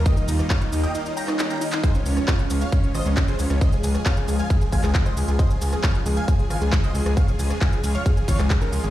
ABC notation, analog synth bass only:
X:1
M:4/4
L:1/16
Q:1/4=135
K:Dblyd
V:1 name="Analog synth bass" clef=bass
z2 E,, z3 E,, z8 z | z2 D,, z3 D,, z3 A,,, D,, z2 D,, D,, | z2 D,, z3 D,, z3 A,,, D,, z2 D,, D,, | z2 D,, z3 D,, z3 A,,, D,, z2 D,, D,, |
z2 D,, z3 D,, z3 A,,, D,, z2 D,, A,,, |]